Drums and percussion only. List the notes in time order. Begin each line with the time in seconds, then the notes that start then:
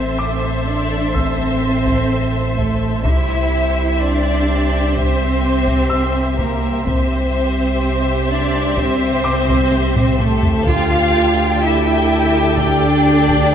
1.15 taiko
1.86 taiko
2.58 taiko
3.05 taiko
4.96 taiko
5.67 taiko
6.39 taiko
6.87 taiko
8.77 taiko
9.48 taiko
9.72 taiko high
9.95 taiko low-mid
10.19 taiko low-mid
10.43 taiko low
10.66 taiko
12.57 taiko
13.28 taiko